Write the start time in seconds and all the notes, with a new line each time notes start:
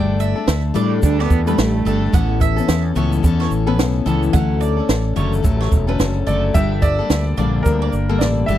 Already playing: G1 G3 A3 D4 A4 D5 G5
0.20 E5, shaker
0.35 A3 D4 A4
0.48 D2, snare, shaker
0.74 A2 G3 A3 D4 A4 D5, shaker
1.02 D2 G3 A3 D4 A4, kick, shaker
1.19 B3 D5, snare
1.30 E2, kick, shaker
1.47 G3 A3 D4 A4 B4, shaker
1.58 A1, snare, shaker
1.85 G1 G3 A3 D4 A4, shaker
2.12 A1 E3 B3 C#4 A4 F#5, kick, shaker
2.41 E5, kick, shaker
2.56 B3 C#4 A4, shaker
2.68 E2, snare, shaker
2.95 C#2 A2 E3 B3 C#4 A4 C#5, shaker
3.12 shaker
3.23 E2 E3 B3 C#4 A4, kick, shaker
3.40 C#5, snare
3.51 A1, shaker
3.67 A2 E3 B3 C#4 A4 B4
3.78 B1, snare, shaker
4.06 C#2 A2 E3 B3 C#4 A4, shaker
4.23 shaker
4.33 D2 F#3 A3 C#4 A4 F#5, kick, shaker
4.61 D5, shaker
4.77 A3 C#4 A4
4.89 A1, snare, shaker
5.16 F#1 D3 F#3 A3 C#4 A4 C#5, shaker
5.33 shaker
5.42 A1 F#3 A3 C#4 A4, kick, shaker
5.61 C#5, snare
5.72 E1, kick, shaker
5.87 D3 F#3 A3 C#4 A4 B4
5.99 F#1, snare, shaker
6.27 F#1 D3 F#3 A3 C#4 A4 D5, shaker
6.54 G1 G3 A#3 D4 A4 E5 G5, kick, shaker
6.82 D5 E5, kick, shaker
6.99 G3 A#3 D4 A4
7.10 D2, snare, shaker
7.37 A#1 G2 D3 G3 A#3 D4 A4 D5, shaker
7.63 D2 G3 A#3 A#4, kick, shaker
7.67 D4
7.82 D5
7.93 G1, shaker
8.09 G2 D3 G3 A#3 D4 A4 A#4
8.19 A1 D5, snare, shaker
8.46 G1 G3 A3 D4 A4 E5, shaker
8.50 G4